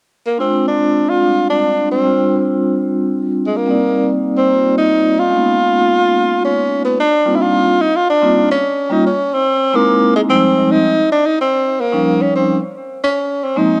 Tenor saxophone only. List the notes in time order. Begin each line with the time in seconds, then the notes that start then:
0.26 A#3
0.40 C4
0.67 D4
1.09 F4
1.50 D4
1.91 C4
3.47 G#3
3.56 A#3
4.37 C4
4.78 D#4
5.20 F4
6.45 C#4
6.84 B3
7.00 D4
7.36 E4
7.41 F4
7.81 D#4
7.96 F4
8.10 D4
8.51 C#4
8.92 D#4
9.06 C#4
9.34 C4
9.76 A#3
10.16 G#3
10.30 C4
10.71 D#4
11.12 D4
11.26 D#4
11.41 C4
11.80 A#3
12.22 C#4
12.35 C4
13.03 C#4
13.44 C4
13.58 D#4